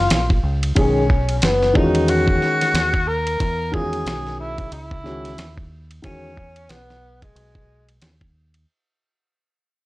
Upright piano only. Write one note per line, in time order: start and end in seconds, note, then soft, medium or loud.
0.75 1.01 D#3 medium
0.75 1.01 G#3 medium
0.75 1.02 C#4 medium
0.75 1.02 G#4 medium
1.74 2.89 D#3 medium
1.74 2.90 G#3 medium
1.74 2.90 C#4 medium
1.74 1.84 F4 medium
1.83 2.94 F#4 medium
3.72 4.66 D#3 medium
3.72 4.66 G#3 medium
3.72 4.67 C#4 medium
3.72 3.82 F4 medium
3.81 4.71 F#4 medium
5.04 5.30 D#3 medium
5.04 5.30 G#3 medium
5.04 5.30 C#4 medium
5.04 5.31 F#4 medium
6.02 6.28 D#3 medium
6.02 6.29 G#3 medium
6.02 6.29 C#4 medium
6.02 6.30 F#4 medium